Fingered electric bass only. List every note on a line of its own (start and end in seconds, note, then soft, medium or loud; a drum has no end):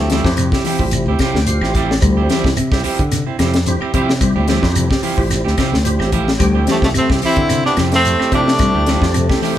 0.00 0.21 D2 medium
0.24 0.49 F2 loud
0.79 1.04 A1 medium
1.06 1.18 D2 medium
1.34 1.59 D2 medium
1.61 1.97 A1 medium
2.02 2.27 D2 loud
2.44 2.55 C2 loud
2.57 2.70 C3 medium
2.71 2.83 C2 medium
2.99 3.23 D3 medium
3.39 3.77 F2 medium
3.80 muted fingered electric bass stroke soft
3.94 4.32 C3 medium
4.36 4.60 D2 medium
4.62 4.87 F2 loud
5.18 5.42 A1 medium
5.45 5.56 D2 medium
5.72 5.97 D2 medium
6.00 6.36 A1 medium
6.40 6.64 D2 loud
6.82 6.93 C2 loud
6.95 7.08 C3 loud
7.10 7.21 C2 medium
7.37 7.61 D3 medium
7.77 8.15 F2 medium
8.20 muted fingered electric bass stroke soft
8.32 8.70 C3 medium
8.74 8.99 D2 medium
9.02 9.26 F2 loud